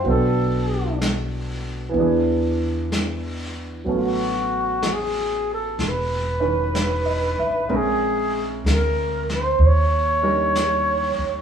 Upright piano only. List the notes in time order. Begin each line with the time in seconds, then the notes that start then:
Already playing: G5
0.04 F#3 B3
0.08 D4 A4
1.89 E3 B3
1.97 D4 G#4
3.84 F#3 B3 C#4
3.89 A3
6.40 D#3 C#4 B4
6.74 C#5
7.05 D#5
7.39 E5
7.69 G#3 C4 C#4 A#4
10.22 G3 C#4 D#4 A#4